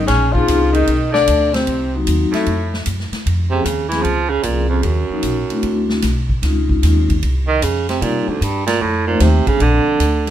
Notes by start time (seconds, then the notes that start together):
0.06 A#1 C#3 C#4, kick, snare, ride
0.33 F3 A#3 C4 C#4 D#4 F4 G#4, kick
0.48 C2, kick, hi-hat pedal, ride
0.72 D#3 D#4, ride
0.87 B1, kick, ride
1.11 D3 D4, snare
1.27 D2, kick, hi-hat pedal, ride
1.51 C3 C4, snare, ride
1.67 C2, kick, ride
1.94 F#3 A#3 C4 D#4 F#4
2.07 D#2, kick, hi-hat pedal, ride
2.32 A2 A3, muted upright bass stroke, snare, ride
2.46 F2, kick, ride
2.74 snare
2.86 F#2, kick, hi-hat pedal, ride
3.00 snare
3.11 muted upright bass stroke, snare, ride
3.26 F2, kick, ride
3.50 C3 F3 A#3 C4 C#4 G#4
3.65 D#2 C#3, kick, hi-hat pedal, ride
3.89 E3 F3 A#3 C4 C#4 G#4, snare, ride
4.02 C#2 F3, kick, ride
4.29 C#3
4.43 C2 A#2 F3 A#3 C4 C#4 G#4, kick, hi-hat pedal, ride
4.68 F2
4.83 D#2 F#2, kick, ride
5.10 F3 A#3 C#4 D#4 F#4, muted upright bass stroke
5.23 A#1, kick, hi-hat pedal, ride
5.49 A3 C4 D4 E4 F#4, muted upright bass stroke, ride
5.63 D2, kick, ride
5.89 snare
6.02 B1, kick, snare, hi-hat pedal, ride
6.29 kick
6.42 C#2 G#3 C4 C#4 D#4 F4, kick, snare, ride
6.69 kick
6.83 D#2 G#3 C4 C#4 D#4 F4, kick, snare, hi-hat pedal, ride
7.09 kick, ride
7.23 C2, kick, ride
7.48 D#3
7.61 F2 C#3, kick, hi-hat pedal, ride
7.89 C3, snare, ride
8.00 A#2 C3 G3 A#3 C4 D#4 G4, kick, ride
8.28 D2, muted upright bass stroke
8.41 G2, kick, hi-hat pedal, ride
8.66 A#2, snare, ride
8.80 F2 A2, kick
9.07 A#2 F3 A3 C4 D#4 C5
9.20 D#2 C3, kick, snare, hi-hat pedal, ride
9.47 C#3 F3 A#3 C4 D4 A4, muted upright bass stroke, kick, ride
9.60 A#1 D3, kick, ride
9.85 muted upright bass stroke
9.99 D2, kick, hi-hat pedal, ride
10.26 F3 G3 B3, ride